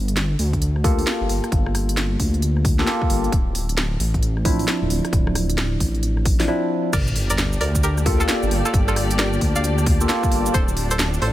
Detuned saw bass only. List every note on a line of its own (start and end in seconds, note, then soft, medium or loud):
0.00 0.36 G1 medium
0.39 1.03 D2 medium
1.21 1.27 G1 medium
1.29 1.40 G1 medium
1.52 2.16 G1 loud
2.20 2.84 D2 medium
3.10 3.28 G1 medium
3.32 3.97 D1 medium
4.00 4.64 A1 medium
4.82 4.88 D1 medium
4.90 5.01 D1 medium
5.13 5.77 D1 loud
5.80 6.48 A1 medium
6.93 7.58 G1 medium
7.61 8.25 D2 medium
8.43 8.49 G1 medium
8.51 8.62 G1 medium
8.74 9.38 G1 medium
9.41 10.06 D2 medium
10.32 10.50 G1 medium
10.54 11.18 D1 medium
11.22 11.33 A1 medium